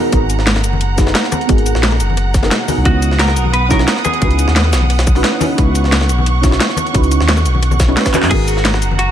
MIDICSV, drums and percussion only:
0, 0, Header, 1, 2, 480
1, 0, Start_track
1, 0, Tempo, 340909
1, 179, Time_signature, 4, 2, 24, 8
1, 12833, End_track
2, 0, Start_track
2, 0, Title_t, "Drums"
2, 176, Note_on_c, 9, 42, 90
2, 178, Note_off_c, 9, 42, 0
2, 178, Note_on_c, 9, 42, 97
2, 180, Note_on_c, 9, 36, 124
2, 319, Note_off_c, 9, 42, 0
2, 320, Note_off_c, 9, 36, 0
2, 417, Note_on_c, 9, 42, 65
2, 417, Note_on_c, 9, 69, 57
2, 419, Note_off_c, 9, 42, 0
2, 419, Note_on_c, 9, 42, 71
2, 546, Note_on_c, 9, 38, 38
2, 558, Note_off_c, 9, 69, 0
2, 560, Note_off_c, 9, 42, 0
2, 657, Note_off_c, 9, 38, 0
2, 657, Note_on_c, 9, 38, 127
2, 657, Note_on_c, 9, 42, 93
2, 661, Note_off_c, 9, 38, 0
2, 661, Note_off_c, 9, 42, 0
2, 661, Note_on_c, 9, 38, 118
2, 661, Note_on_c, 9, 42, 88
2, 783, Note_on_c, 9, 37, 34
2, 788, Note_off_c, 9, 38, 0
2, 788, Note_on_c, 9, 38, 50
2, 788, Note_on_c, 9, 60, 72
2, 802, Note_off_c, 9, 42, 0
2, 899, Note_on_c, 9, 42, 68
2, 899, Note_on_c, 9, 69, 60
2, 902, Note_off_c, 9, 42, 0
2, 902, Note_on_c, 9, 42, 67
2, 924, Note_off_c, 9, 37, 0
2, 929, Note_off_c, 9, 38, 0
2, 929, Note_off_c, 9, 60, 0
2, 1030, Note_on_c, 9, 63, 66
2, 1039, Note_off_c, 9, 69, 0
2, 1043, Note_off_c, 9, 42, 0
2, 1137, Note_on_c, 9, 42, 88
2, 1142, Note_off_c, 9, 42, 0
2, 1142, Note_on_c, 9, 42, 85
2, 1170, Note_off_c, 9, 63, 0
2, 1283, Note_off_c, 9, 42, 0
2, 1377, Note_on_c, 9, 42, 62
2, 1377, Note_on_c, 9, 69, 55
2, 1380, Note_on_c, 9, 36, 108
2, 1382, Note_off_c, 9, 42, 0
2, 1382, Note_on_c, 9, 38, 57
2, 1382, Note_on_c, 9, 42, 67
2, 1500, Note_on_c, 9, 60, 64
2, 1503, Note_on_c, 9, 37, 35
2, 1508, Note_off_c, 9, 38, 0
2, 1508, Note_on_c, 9, 38, 53
2, 1518, Note_off_c, 9, 69, 0
2, 1521, Note_off_c, 9, 36, 0
2, 1522, Note_off_c, 9, 42, 0
2, 1618, Note_off_c, 9, 38, 0
2, 1618, Note_on_c, 9, 38, 127
2, 1618, Note_on_c, 9, 42, 92
2, 1623, Note_off_c, 9, 38, 0
2, 1623, Note_off_c, 9, 42, 0
2, 1623, Note_on_c, 9, 38, 121
2, 1623, Note_on_c, 9, 42, 93
2, 1641, Note_off_c, 9, 60, 0
2, 1644, Note_off_c, 9, 37, 0
2, 1749, Note_off_c, 9, 38, 0
2, 1749, Note_on_c, 9, 38, 45
2, 1763, Note_off_c, 9, 42, 0
2, 1858, Note_on_c, 9, 37, 60
2, 1858, Note_on_c, 9, 42, 64
2, 1858, Note_on_c, 9, 69, 57
2, 1860, Note_on_c, 9, 63, 93
2, 1862, Note_off_c, 9, 42, 0
2, 1862, Note_on_c, 9, 42, 74
2, 1889, Note_off_c, 9, 38, 0
2, 1989, Note_off_c, 9, 42, 0
2, 1989, Note_on_c, 9, 42, 47
2, 1999, Note_off_c, 9, 37, 0
2, 1999, Note_off_c, 9, 69, 0
2, 2001, Note_off_c, 9, 63, 0
2, 2097, Note_off_c, 9, 42, 0
2, 2097, Note_on_c, 9, 42, 92
2, 2101, Note_off_c, 9, 42, 0
2, 2101, Note_on_c, 9, 36, 127
2, 2101, Note_on_c, 9, 42, 98
2, 2227, Note_off_c, 9, 42, 0
2, 2227, Note_on_c, 9, 42, 46
2, 2242, Note_off_c, 9, 36, 0
2, 2338, Note_off_c, 9, 42, 0
2, 2338, Note_on_c, 9, 42, 66
2, 2338, Note_on_c, 9, 69, 59
2, 2342, Note_off_c, 9, 42, 0
2, 2342, Note_on_c, 9, 42, 69
2, 2466, Note_on_c, 9, 38, 55
2, 2479, Note_off_c, 9, 69, 0
2, 2483, Note_off_c, 9, 42, 0
2, 2578, Note_off_c, 9, 38, 0
2, 2578, Note_on_c, 9, 38, 127
2, 2578, Note_on_c, 9, 42, 90
2, 2580, Note_off_c, 9, 38, 0
2, 2580, Note_off_c, 9, 42, 0
2, 2580, Note_on_c, 9, 38, 115
2, 2580, Note_on_c, 9, 42, 91
2, 2704, Note_on_c, 9, 37, 32
2, 2706, Note_on_c, 9, 60, 68
2, 2720, Note_off_c, 9, 38, 0
2, 2720, Note_off_c, 9, 42, 0
2, 2817, Note_on_c, 9, 42, 66
2, 2817, Note_on_c, 9, 69, 59
2, 2819, Note_off_c, 9, 42, 0
2, 2819, Note_on_c, 9, 42, 69
2, 2845, Note_off_c, 9, 37, 0
2, 2847, Note_off_c, 9, 60, 0
2, 2954, Note_on_c, 9, 63, 61
2, 2958, Note_off_c, 9, 69, 0
2, 2960, Note_off_c, 9, 42, 0
2, 3058, Note_on_c, 9, 37, 35
2, 3058, Note_on_c, 9, 42, 88
2, 3059, Note_off_c, 9, 42, 0
2, 3059, Note_on_c, 9, 42, 87
2, 3095, Note_off_c, 9, 63, 0
2, 3199, Note_off_c, 9, 37, 0
2, 3200, Note_off_c, 9, 42, 0
2, 3298, Note_on_c, 9, 42, 64
2, 3298, Note_on_c, 9, 69, 59
2, 3300, Note_off_c, 9, 42, 0
2, 3300, Note_on_c, 9, 36, 115
2, 3300, Note_on_c, 9, 38, 44
2, 3300, Note_on_c, 9, 42, 71
2, 3418, Note_on_c, 9, 60, 70
2, 3424, Note_on_c, 9, 37, 32
2, 3425, Note_off_c, 9, 38, 0
2, 3425, Note_on_c, 9, 38, 57
2, 3439, Note_off_c, 9, 69, 0
2, 3440, Note_off_c, 9, 36, 0
2, 3441, Note_off_c, 9, 42, 0
2, 3539, Note_off_c, 9, 38, 0
2, 3539, Note_on_c, 9, 38, 125
2, 3539, Note_on_c, 9, 42, 87
2, 3558, Note_off_c, 9, 60, 0
2, 3564, Note_off_c, 9, 37, 0
2, 3680, Note_off_c, 9, 38, 0
2, 3680, Note_off_c, 9, 42, 0
2, 3776, Note_on_c, 9, 63, 93
2, 3777, Note_on_c, 9, 46, 87
2, 3779, Note_on_c, 9, 42, 62
2, 3779, Note_on_c, 9, 69, 57
2, 3917, Note_off_c, 9, 63, 0
2, 3918, Note_off_c, 9, 46, 0
2, 3920, Note_off_c, 9, 42, 0
2, 3920, Note_off_c, 9, 69, 0
2, 4018, Note_on_c, 9, 42, 89
2, 4019, Note_on_c, 9, 36, 115
2, 4159, Note_off_c, 9, 42, 0
2, 4160, Note_off_c, 9, 36, 0
2, 4257, Note_on_c, 9, 42, 66
2, 4257, Note_on_c, 9, 69, 61
2, 4259, Note_off_c, 9, 42, 0
2, 4259, Note_on_c, 9, 42, 70
2, 4386, Note_on_c, 9, 38, 37
2, 4398, Note_off_c, 9, 69, 0
2, 4399, Note_off_c, 9, 42, 0
2, 4497, Note_off_c, 9, 38, 0
2, 4497, Note_on_c, 9, 38, 124
2, 4497, Note_on_c, 9, 42, 92
2, 4499, Note_off_c, 9, 38, 0
2, 4499, Note_off_c, 9, 42, 0
2, 4499, Note_on_c, 9, 38, 116
2, 4499, Note_on_c, 9, 42, 90
2, 4618, Note_on_c, 9, 60, 68
2, 4623, Note_on_c, 9, 37, 31
2, 4624, Note_off_c, 9, 38, 0
2, 4624, Note_on_c, 9, 38, 48
2, 4640, Note_off_c, 9, 42, 0
2, 4737, Note_on_c, 9, 42, 66
2, 4737, Note_on_c, 9, 69, 61
2, 4740, Note_off_c, 9, 42, 0
2, 4740, Note_on_c, 9, 42, 70
2, 4759, Note_off_c, 9, 60, 0
2, 4764, Note_off_c, 9, 37, 0
2, 4765, Note_off_c, 9, 38, 0
2, 4856, Note_on_c, 9, 63, 63
2, 4878, Note_off_c, 9, 69, 0
2, 4881, Note_off_c, 9, 42, 0
2, 4977, Note_on_c, 9, 42, 90
2, 4980, Note_off_c, 9, 42, 0
2, 4980, Note_on_c, 9, 42, 82
2, 4997, Note_off_c, 9, 63, 0
2, 5121, Note_off_c, 9, 42, 0
2, 5218, Note_on_c, 9, 38, 59
2, 5218, Note_on_c, 9, 42, 70
2, 5218, Note_on_c, 9, 69, 59
2, 5219, Note_on_c, 9, 36, 111
2, 5341, Note_on_c, 9, 60, 62
2, 5342, Note_off_c, 9, 38, 0
2, 5342, Note_on_c, 9, 38, 54
2, 5343, Note_on_c, 9, 37, 31
2, 5358, Note_off_c, 9, 69, 0
2, 5359, Note_off_c, 9, 42, 0
2, 5360, Note_off_c, 9, 36, 0
2, 5458, Note_off_c, 9, 38, 0
2, 5458, Note_on_c, 9, 38, 118
2, 5458, Note_on_c, 9, 42, 90
2, 5459, Note_off_c, 9, 38, 0
2, 5459, Note_off_c, 9, 42, 0
2, 5459, Note_on_c, 9, 38, 115
2, 5459, Note_on_c, 9, 42, 89
2, 5482, Note_off_c, 9, 60, 0
2, 5484, Note_off_c, 9, 37, 0
2, 5583, Note_off_c, 9, 38, 0
2, 5583, Note_on_c, 9, 38, 46
2, 5600, Note_off_c, 9, 42, 0
2, 5697, Note_on_c, 9, 42, 71
2, 5699, Note_off_c, 9, 42, 0
2, 5699, Note_on_c, 9, 37, 55
2, 5699, Note_on_c, 9, 42, 64
2, 5699, Note_on_c, 9, 69, 60
2, 5707, Note_on_c, 9, 63, 96
2, 5724, Note_off_c, 9, 38, 0
2, 5822, Note_off_c, 9, 42, 0
2, 5822, Note_on_c, 9, 42, 47
2, 5840, Note_off_c, 9, 37, 0
2, 5840, Note_off_c, 9, 69, 0
2, 5848, Note_off_c, 9, 63, 0
2, 5937, Note_off_c, 9, 42, 0
2, 5937, Note_on_c, 9, 42, 99
2, 5938, Note_off_c, 9, 42, 0
2, 5938, Note_on_c, 9, 42, 92
2, 5939, Note_on_c, 9, 36, 114
2, 6063, Note_off_c, 9, 42, 0
2, 6063, Note_on_c, 9, 42, 46
2, 6080, Note_off_c, 9, 36, 0
2, 6177, Note_off_c, 9, 42, 0
2, 6177, Note_on_c, 9, 42, 68
2, 6179, Note_off_c, 9, 42, 0
2, 6179, Note_on_c, 9, 42, 66
2, 6179, Note_on_c, 9, 69, 61
2, 6304, Note_on_c, 9, 38, 56
2, 6320, Note_off_c, 9, 42, 0
2, 6320, Note_off_c, 9, 69, 0
2, 6419, Note_off_c, 9, 38, 0
2, 6419, Note_on_c, 9, 38, 123
2, 6419, Note_on_c, 9, 42, 96
2, 6543, Note_on_c, 9, 60, 63
2, 6560, Note_off_c, 9, 38, 0
2, 6560, Note_off_c, 9, 42, 0
2, 6658, Note_on_c, 9, 42, 68
2, 6658, Note_on_c, 9, 69, 67
2, 6659, Note_off_c, 9, 42, 0
2, 6659, Note_on_c, 9, 38, 108
2, 6659, Note_on_c, 9, 42, 80
2, 6684, Note_off_c, 9, 60, 0
2, 6786, Note_on_c, 9, 63, 64
2, 6799, Note_off_c, 9, 69, 0
2, 6800, Note_off_c, 9, 38, 0
2, 6800, Note_off_c, 9, 42, 0
2, 6898, Note_on_c, 9, 37, 34
2, 6898, Note_on_c, 9, 42, 90
2, 6899, Note_on_c, 9, 46, 71
2, 6927, Note_off_c, 9, 63, 0
2, 7024, Note_off_c, 9, 42, 0
2, 7024, Note_on_c, 9, 38, 108
2, 7024, Note_on_c, 9, 42, 79
2, 7039, Note_off_c, 9, 37, 0
2, 7040, Note_off_c, 9, 46, 0
2, 7138, Note_off_c, 9, 42, 0
2, 7138, Note_on_c, 9, 42, 66
2, 7138, Note_on_c, 9, 69, 61
2, 7140, Note_on_c, 9, 36, 106
2, 7165, Note_off_c, 9, 38, 0
2, 7256, Note_on_c, 9, 60, 64
2, 7262, Note_on_c, 9, 37, 35
2, 7265, Note_on_c, 9, 46, 74
2, 7278, Note_off_c, 9, 42, 0
2, 7278, Note_off_c, 9, 69, 0
2, 7280, Note_off_c, 9, 36, 0
2, 7377, Note_on_c, 9, 38, 111
2, 7377, Note_on_c, 9, 42, 91
2, 7381, Note_off_c, 9, 38, 0
2, 7381, Note_off_c, 9, 42, 0
2, 7381, Note_on_c, 9, 38, 119
2, 7381, Note_on_c, 9, 42, 90
2, 7397, Note_off_c, 9, 60, 0
2, 7403, Note_off_c, 9, 37, 0
2, 7406, Note_off_c, 9, 46, 0
2, 7522, Note_off_c, 9, 38, 0
2, 7522, Note_off_c, 9, 42, 0
2, 7611, Note_on_c, 9, 63, 98
2, 7618, Note_on_c, 9, 42, 64
2, 7618, Note_on_c, 9, 69, 64
2, 7621, Note_on_c, 9, 46, 86
2, 7752, Note_off_c, 9, 63, 0
2, 7759, Note_off_c, 9, 42, 0
2, 7759, Note_off_c, 9, 69, 0
2, 7762, Note_off_c, 9, 46, 0
2, 7858, Note_on_c, 9, 42, 98
2, 7861, Note_on_c, 9, 36, 115
2, 7863, Note_off_c, 9, 42, 0
2, 7863, Note_on_c, 9, 42, 98
2, 8001, Note_off_c, 9, 36, 0
2, 8003, Note_off_c, 9, 42, 0
2, 8098, Note_on_c, 9, 42, 70
2, 8098, Note_on_c, 9, 69, 62
2, 8102, Note_off_c, 9, 42, 0
2, 8102, Note_on_c, 9, 42, 68
2, 8227, Note_on_c, 9, 38, 38
2, 8239, Note_off_c, 9, 69, 0
2, 8243, Note_off_c, 9, 42, 0
2, 8338, Note_off_c, 9, 38, 0
2, 8338, Note_on_c, 9, 38, 126
2, 8338, Note_on_c, 9, 42, 102
2, 8342, Note_off_c, 9, 38, 0
2, 8342, Note_off_c, 9, 42, 0
2, 8342, Note_on_c, 9, 38, 115
2, 8342, Note_on_c, 9, 42, 88
2, 8461, Note_on_c, 9, 60, 63
2, 8464, Note_on_c, 9, 37, 34
2, 8467, Note_off_c, 9, 38, 0
2, 8467, Note_on_c, 9, 38, 52
2, 8483, Note_off_c, 9, 42, 0
2, 8579, Note_on_c, 9, 42, 68
2, 8579, Note_on_c, 9, 69, 64
2, 8580, Note_off_c, 9, 42, 0
2, 8580, Note_on_c, 9, 42, 68
2, 8602, Note_off_c, 9, 60, 0
2, 8605, Note_off_c, 9, 37, 0
2, 8607, Note_off_c, 9, 38, 0
2, 8707, Note_on_c, 9, 63, 68
2, 8720, Note_off_c, 9, 69, 0
2, 8721, Note_off_c, 9, 42, 0
2, 8820, Note_on_c, 9, 42, 88
2, 8848, Note_off_c, 9, 63, 0
2, 8961, Note_off_c, 9, 42, 0
2, 9060, Note_on_c, 9, 38, 58
2, 9060, Note_on_c, 9, 42, 70
2, 9061, Note_off_c, 9, 42, 0
2, 9061, Note_on_c, 9, 36, 102
2, 9061, Note_on_c, 9, 42, 67
2, 9061, Note_on_c, 9, 69, 65
2, 9169, Note_on_c, 9, 60, 60
2, 9186, Note_off_c, 9, 38, 0
2, 9186, Note_on_c, 9, 37, 34
2, 9186, Note_on_c, 9, 38, 56
2, 9202, Note_off_c, 9, 36, 0
2, 9202, Note_off_c, 9, 42, 0
2, 9202, Note_off_c, 9, 69, 0
2, 9299, Note_off_c, 9, 38, 0
2, 9299, Note_on_c, 9, 38, 116
2, 9299, Note_on_c, 9, 42, 96
2, 9302, Note_off_c, 9, 38, 0
2, 9302, Note_off_c, 9, 42, 0
2, 9302, Note_on_c, 9, 38, 115
2, 9302, Note_on_c, 9, 42, 94
2, 9310, Note_off_c, 9, 60, 0
2, 9327, Note_off_c, 9, 37, 0
2, 9426, Note_off_c, 9, 38, 0
2, 9426, Note_on_c, 9, 38, 42
2, 9443, Note_off_c, 9, 42, 0
2, 9523, Note_on_c, 9, 63, 82
2, 9540, Note_on_c, 9, 37, 54
2, 9540, Note_on_c, 9, 42, 72
2, 9540, Note_on_c, 9, 69, 64
2, 9542, Note_off_c, 9, 42, 0
2, 9542, Note_on_c, 9, 42, 75
2, 9567, Note_off_c, 9, 38, 0
2, 9664, Note_off_c, 9, 63, 0
2, 9667, Note_off_c, 9, 42, 0
2, 9667, Note_on_c, 9, 42, 47
2, 9681, Note_off_c, 9, 37, 0
2, 9681, Note_off_c, 9, 69, 0
2, 9778, Note_off_c, 9, 42, 0
2, 9778, Note_on_c, 9, 42, 99
2, 9781, Note_on_c, 9, 36, 114
2, 9782, Note_off_c, 9, 42, 0
2, 9782, Note_on_c, 9, 42, 101
2, 9904, Note_on_c, 9, 69, 29
2, 9907, Note_off_c, 9, 42, 0
2, 9907, Note_on_c, 9, 42, 46
2, 9922, Note_off_c, 9, 36, 0
2, 10018, Note_off_c, 9, 42, 0
2, 10018, Note_off_c, 9, 69, 0
2, 10018, Note_on_c, 9, 42, 71
2, 10018, Note_on_c, 9, 69, 62
2, 10020, Note_off_c, 9, 42, 0
2, 10020, Note_on_c, 9, 42, 72
2, 10145, Note_on_c, 9, 38, 55
2, 10158, Note_off_c, 9, 69, 0
2, 10161, Note_off_c, 9, 42, 0
2, 10257, Note_off_c, 9, 38, 0
2, 10257, Note_on_c, 9, 38, 122
2, 10257, Note_on_c, 9, 42, 101
2, 10260, Note_off_c, 9, 38, 0
2, 10260, Note_off_c, 9, 42, 0
2, 10260, Note_on_c, 9, 38, 122
2, 10260, Note_on_c, 9, 42, 85
2, 10377, Note_on_c, 9, 60, 63
2, 10382, Note_on_c, 9, 37, 35
2, 10382, Note_on_c, 9, 69, 29
2, 10401, Note_off_c, 9, 38, 0
2, 10401, Note_off_c, 9, 42, 0
2, 10497, Note_off_c, 9, 69, 0
2, 10497, Note_on_c, 9, 42, 70
2, 10497, Note_on_c, 9, 69, 61
2, 10500, Note_off_c, 9, 42, 0
2, 10500, Note_on_c, 9, 42, 70
2, 10518, Note_off_c, 9, 60, 0
2, 10523, Note_off_c, 9, 37, 0
2, 10625, Note_on_c, 9, 63, 64
2, 10638, Note_off_c, 9, 69, 0
2, 10641, Note_off_c, 9, 42, 0
2, 10737, Note_on_c, 9, 37, 35
2, 10737, Note_on_c, 9, 42, 98
2, 10741, Note_off_c, 9, 42, 0
2, 10741, Note_on_c, 9, 42, 76
2, 10765, Note_off_c, 9, 63, 0
2, 10858, Note_on_c, 9, 63, 81
2, 10863, Note_on_c, 9, 69, 28
2, 10878, Note_off_c, 9, 37, 0
2, 10882, Note_off_c, 9, 42, 0
2, 10977, Note_off_c, 9, 69, 0
2, 10977, Note_on_c, 9, 42, 72
2, 10977, Note_on_c, 9, 69, 63
2, 10980, Note_on_c, 9, 36, 99
2, 10981, Note_off_c, 9, 42, 0
2, 10981, Note_on_c, 9, 38, 105
2, 10981, Note_on_c, 9, 42, 85
2, 10999, Note_off_c, 9, 63, 0
2, 11103, Note_on_c, 9, 60, 66
2, 11104, Note_on_c, 9, 37, 35
2, 11118, Note_off_c, 9, 69, 0
2, 11121, Note_off_c, 9, 36, 0
2, 11122, Note_off_c, 9, 38, 0
2, 11122, Note_off_c, 9, 42, 0
2, 11219, Note_on_c, 9, 38, 113
2, 11219, Note_on_c, 9, 42, 95
2, 11220, Note_on_c, 9, 46, 74
2, 11243, Note_off_c, 9, 60, 0
2, 11245, Note_off_c, 9, 37, 0
2, 11344, Note_on_c, 9, 37, 57
2, 11344, Note_on_c, 9, 69, 30
2, 11345, Note_on_c, 9, 36, 59
2, 11346, Note_off_c, 9, 38, 0
2, 11346, Note_off_c, 9, 42, 0
2, 11346, Note_on_c, 9, 38, 102
2, 11346, Note_on_c, 9, 42, 78
2, 11360, Note_off_c, 9, 46, 0
2, 11458, Note_off_c, 9, 42, 0
2, 11458, Note_off_c, 9, 69, 0
2, 11458, Note_on_c, 9, 39, 90
2, 11458, Note_on_c, 9, 42, 67
2, 11458, Note_on_c, 9, 69, 62
2, 11461, Note_on_c, 9, 63, 97
2, 11484, Note_off_c, 9, 37, 0
2, 11486, Note_off_c, 9, 36, 0
2, 11486, Note_off_c, 9, 38, 0
2, 11582, Note_off_c, 9, 39, 0
2, 11582, Note_on_c, 9, 39, 101
2, 11585, Note_on_c, 9, 46, 83
2, 11599, Note_off_c, 9, 42, 0
2, 11599, Note_off_c, 9, 69, 0
2, 11602, Note_off_c, 9, 63, 0
2, 11697, Note_on_c, 9, 42, 98
2, 11697, Note_on_c, 9, 49, 75
2, 11699, Note_on_c, 9, 36, 115
2, 11700, Note_off_c, 9, 42, 0
2, 11700, Note_on_c, 9, 42, 97
2, 11723, Note_off_c, 9, 39, 0
2, 11726, Note_off_c, 9, 46, 0
2, 11837, Note_off_c, 9, 49, 0
2, 11840, Note_off_c, 9, 36, 0
2, 11840, Note_off_c, 9, 42, 0
2, 11937, Note_on_c, 9, 42, 67
2, 11937, Note_on_c, 9, 69, 62
2, 11940, Note_off_c, 9, 42, 0
2, 11940, Note_on_c, 9, 42, 71
2, 12067, Note_on_c, 9, 38, 37
2, 12078, Note_off_c, 9, 69, 0
2, 12081, Note_off_c, 9, 42, 0
2, 12177, Note_off_c, 9, 38, 0
2, 12177, Note_on_c, 9, 38, 127
2, 12177, Note_on_c, 9, 42, 103
2, 12180, Note_off_c, 9, 38, 0
2, 12180, Note_off_c, 9, 42, 0
2, 12180, Note_on_c, 9, 38, 121
2, 12180, Note_on_c, 9, 42, 93
2, 12303, Note_on_c, 9, 37, 36
2, 12304, Note_on_c, 9, 60, 67
2, 12305, Note_off_c, 9, 38, 0
2, 12305, Note_on_c, 9, 38, 51
2, 12321, Note_off_c, 9, 42, 0
2, 12418, Note_on_c, 9, 42, 68
2, 12418, Note_on_c, 9, 69, 62
2, 12420, Note_off_c, 9, 42, 0
2, 12420, Note_on_c, 9, 42, 72
2, 12444, Note_off_c, 9, 37, 0
2, 12445, Note_off_c, 9, 38, 0
2, 12445, Note_off_c, 9, 60, 0
2, 12550, Note_on_c, 9, 63, 77
2, 12559, Note_off_c, 9, 69, 0
2, 12561, Note_off_c, 9, 42, 0
2, 12657, Note_on_c, 9, 42, 99
2, 12658, Note_off_c, 9, 42, 0
2, 12658, Note_on_c, 9, 42, 88
2, 12690, Note_off_c, 9, 63, 0
2, 12799, Note_off_c, 9, 42, 0
2, 12833, End_track
0, 0, End_of_file